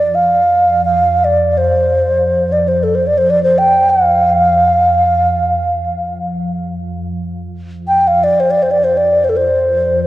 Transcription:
0, 0, Header, 1, 3, 480
1, 0, Start_track
1, 0, Tempo, 500000
1, 9666, End_track
2, 0, Start_track
2, 0, Title_t, "Alto flute"
2, 0, Program_c, 0, 73
2, 0, Note_on_c, 0, 74, 67
2, 140, Note_on_c, 0, 77, 71
2, 155, Note_off_c, 0, 74, 0
2, 808, Note_off_c, 0, 77, 0
2, 813, Note_on_c, 0, 77, 75
2, 1192, Note_on_c, 0, 74, 74
2, 1207, Note_off_c, 0, 77, 0
2, 1510, Note_on_c, 0, 72, 75
2, 1525, Note_off_c, 0, 74, 0
2, 2421, Note_on_c, 0, 74, 68
2, 2435, Note_off_c, 0, 72, 0
2, 2573, Note_on_c, 0, 72, 71
2, 2588, Note_off_c, 0, 74, 0
2, 2721, Note_on_c, 0, 69, 63
2, 2735, Note_off_c, 0, 72, 0
2, 2831, Note_on_c, 0, 72, 68
2, 2846, Note_off_c, 0, 69, 0
2, 2947, Note_on_c, 0, 74, 75
2, 2961, Note_off_c, 0, 72, 0
2, 3050, Note_on_c, 0, 72, 75
2, 3064, Note_off_c, 0, 74, 0
2, 3168, Note_on_c, 0, 74, 84
2, 3183, Note_off_c, 0, 72, 0
2, 3291, Note_off_c, 0, 74, 0
2, 3297, Note_on_c, 0, 72, 69
2, 3438, Note_on_c, 0, 79, 78
2, 3452, Note_off_c, 0, 72, 0
2, 3740, Note_on_c, 0, 77, 79
2, 3755, Note_off_c, 0, 79, 0
2, 5893, Note_off_c, 0, 77, 0
2, 7563, Note_on_c, 0, 79, 74
2, 7750, Note_on_c, 0, 77, 76
2, 7764, Note_off_c, 0, 79, 0
2, 7905, Note_on_c, 0, 74, 71
2, 7919, Note_off_c, 0, 77, 0
2, 8062, Note_on_c, 0, 72, 68
2, 8076, Note_off_c, 0, 74, 0
2, 8165, Note_on_c, 0, 74, 69
2, 8180, Note_off_c, 0, 72, 0
2, 8278, Note_on_c, 0, 72, 69
2, 8293, Note_off_c, 0, 74, 0
2, 8362, Note_on_c, 0, 74, 72
2, 8376, Note_off_c, 0, 72, 0
2, 8484, Note_on_c, 0, 72, 69
2, 8499, Note_off_c, 0, 74, 0
2, 8613, Note_on_c, 0, 74, 69
2, 8627, Note_off_c, 0, 72, 0
2, 8873, Note_on_c, 0, 72, 67
2, 8887, Note_off_c, 0, 74, 0
2, 8919, Note_on_c, 0, 69, 59
2, 8934, Note_off_c, 0, 72, 0
2, 8989, Note_on_c, 0, 72, 73
2, 9004, Note_off_c, 0, 69, 0
2, 9623, Note_off_c, 0, 72, 0
2, 9630, Note_on_c, 0, 72, 76
2, 9666, Note_off_c, 0, 72, 0
2, 9666, End_track
3, 0, Start_track
3, 0, Title_t, "Ambient pad"
3, 0, Program_c, 1, 92
3, 0, Note_on_c, 1, 41, 67
3, 6791, Note_off_c, 1, 41, 0
3, 6803, Note_on_c, 1, 41, 68
3, 9666, Note_off_c, 1, 41, 0
3, 9666, End_track
0, 0, End_of_file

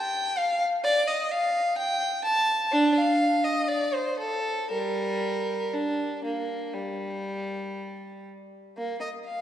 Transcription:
0, 0, Header, 1, 2, 480
1, 0, Start_track
1, 0, Key_signature, -2, "minor"
1, 0, Tempo, 927357
1, 439, Time_signature, 4, 2, 24, 8
1, 1404, Tempo, 975610
1, 1884, Tempo, 1018676
1, 3804, Tempo, 983607
1, 4610, End_track
2, 0, Start_track
2, 0, Title_t, "Violin"
2, 0, Program_c, 0, 40
2, 0, Note_on_c, 0, 79, 107
2, 192, Note_off_c, 0, 79, 0
2, 196, Note_on_c, 0, 77, 103
2, 317, Note_off_c, 0, 77, 0
2, 434, Note_on_c, 0, 74, 118
2, 548, Note_off_c, 0, 74, 0
2, 556, Note_on_c, 0, 75, 95
2, 678, Note_off_c, 0, 75, 0
2, 678, Note_on_c, 0, 77, 94
2, 918, Note_off_c, 0, 77, 0
2, 919, Note_on_c, 0, 79, 97
2, 1154, Note_off_c, 0, 79, 0
2, 1162, Note_on_c, 0, 81, 96
2, 1400, Note_off_c, 0, 81, 0
2, 1405, Note_on_c, 0, 62, 107
2, 1519, Note_off_c, 0, 62, 0
2, 1521, Note_on_c, 0, 77, 92
2, 1756, Note_off_c, 0, 77, 0
2, 1763, Note_on_c, 0, 75, 89
2, 1881, Note_on_c, 0, 74, 93
2, 1884, Note_off_c, 0, 75, 0
2, 2001, Note_off_c, 0, 74, 0
2, 2003, Note_on_c, 0, 72, 82
2, 2121, Note_on_c, 0, 69, 85
2, 2122, Note_off_c, 0, 72, 0
2, 2359, Note_off_c, 0, 69, 0
2, 2359, Note_on_c, 0, 55, 76
2, 2362, Note_on_c, 0, 70, 88
2, 2829, Note_off_c, 0, 55, 0
2, 2839, Note_off_c, 0, 70, 0
2, 2844, Note_on_c, 0, 62, 84
2, 3086, Note_on_c, 0, 58, 72
2, 3087, Note_off_c, 0, 62, 0
2, 3322, Note_off_c, 0, 58, 0
2, 3322, Note_on_c, 0, 55, 74
2, 4050, Note_off_c, 0, 55, 0
2, 4295, Note_on_c, 0, 58, 66
2, 4409, Note_off_c, 0, 58, 0
2, 4411, Note_on_c, 0, 75, 57
2, 4450, Note_off_c, 0, 75, 0
2, 4529, Note_on_c, 0, 77, 58
2, 4610, Note_off_c, 0, 77, 0
2, 4610, End_track
0, 0, End_of_file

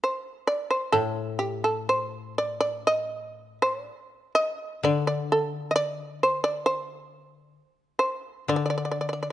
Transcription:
0, 0, Header, 1, 3, 480
1, 0, Start_track
1, 0, Tempo, 941915
1, 479, Time_signature, 2, 2, 24, 8
1, 960, Tempo, 985222
1, 2400, Tempo, 934579
1, 2880, Tempo, 895522
1, 3840, Tempo, 937500
1, 4739, End_track
2, 0, Start_track
2, 0, Title_t, "Shamisen"
2, 0, Program_c, 0, 106
2, 18, Note_on_c, 0, 72, 72
2, 233, Note_off_c, 0, 72, 0
2, 242, Note_on_c, 0, 74, 74
2, 352, Note_off_c, 0, 74, 0
2, 359, Note_on_c, 0, 72, 67
2, 469, Note_off_c, 0, 72, 0
2, 471, Note_on_c, 0, 69, 69
2, 697, Note_off_c, 0, 69, 0
2, 708, Note_on_c, 0, 67, 65
2, 824, Note_off_c, 0, 67, 0
2, 836, Note_on_c, 0, 69, 65
2, 950, Note_off_c, 0, 69, 0
2, 963, Note_on_c, 0, 72, 66
2, 1181, Note_off_c, 0, 72, 0
2, 1203, Note_on_c, 0, 74, 70
2, 1305, Note_off_c, 0, 74, 0
2, 1311, Note_on_c, 0, 74, 68
2, 1428, Note_off_c, 0, 74, 0
2, 1441, Note_on_c, 0, 75, 73
2, 1787, Note_off_c, 0, 75, 0
2, 1807, Note_on_c, 0, 72, 72
2, 1909, Note_off_c, 0, 72, 0
2, 1909, Note_on_c, 0, 74, 72
2, 2145, Note_off_c, 0, 74, 0
2, 2162, Note_on_c, 0, 75, 76
2, 2381, Note_off_c, 0, 75, 0
2, 2403, Note_on_c, 0, 74, 73
2, 2514, Note_off_c, 0, 74, 0
2, 2520, Note_on_c, 0, 74, 65
2, 2632, Note_off_c, 0, 74, 0
2, 2647, Note_on_c, 0, 69, 68
2, 2833, Note_off_c, 0, 69, 0
2, 2847, Note_on_c, 0, 75, 53
2, 2869, Note_off_c, 0, 75, 0
2, 2871, Note_on_c, 0, 74, 74
2, 3099, Note_off_c, 0, 74, 0
2, 3125, Note_on_c, 0, 72, 67
2, 3234, Note_off_c, 0, 72, 0
2, 3236, Note_on_c, 0, 74, 71
2, 3348, Note_off_c, 0, 74, 0
2, 3354, Note_on_c, 0, 72, 74
2, 3606, Note_off_c, 0, 72, 0
2, 3606, Note_on_c, 0, 73, 74
2, 3676, Note_off_c, 0, 73, 0
2, 3676, Note_on_c, 0, 72, 74
2, 3746, Note_off_c, 0, 72, 0
2, 3746, Note_on_c, 0, 73, 74
2, 3815, Note_off_c, 0, 73, 0
2, 3815, Note_on_c, 0, 72, 74
2, 4051, Note_off_c, 0, 72, 0
2, 4058, Note_on_c, 0, 72, 72
2, 4286, Note_off_c, 0, 72, 0
2, 4315, Note_on_c, 0, 74, 67
2, 4344, Note_off_c, 0, 74, 0
2, 4351, Note_on_c, 0, 74, 48
2, 4384, Note_off_c, 0, 74, 0
2, 4399, Note_on_c, 0, 74, 48
2, 4415, Note_off_c, 0, 74, 0
2, 4421, Note_on_c, 0, 74, 46
2, 4454, Note_off_c, 0, 74, 0
2, 4460, Note_on_c, 0, 74, 48
2, 4492, Note_off_c, 0, 74, 0
2, 4498, Note_on_c, 0, 74, 40
2, 4525, Note_off_c, 0, 74, 0
2, 4531, Note_on_c, 0, 74, 44
2, 4568, Note_off_c, 0, 74, 0
2, 4579, Note_on_c, 0, 74, 37
2, 4612, Note_off_c, 0, 74, 0
2, 4620, Note_on_c, 0, 74, 41
2, 4635, Note_off_c, 0, 74, 0
2, 4641, Note_on_c, 0, 74, 37
2, 4681, Note_off_c, 0, 74, 0
2, 4690, Note_on_c, 0, 74, 42
2, 4724, Note_off_c, 0, 74, 0
2, 4739, End_track
3, 0, Start_track
3, 0, Title_t, "Koto"
3, 0, Program_c, 1, 107
3, 474, Note_on_c, 1, 45, 46
3, 1924, Note_off_c, 1, 45, 0
3, 2397, Note_on_c, 1, 50, 44
3, 3838, Note_off_c, 1, 50, 0
3, 4310, Note_on_c, 1, 50, 44
3, 4739, Note_off_c, 1, 50, 0
3, 4739, End_track
0, 0, End_of_file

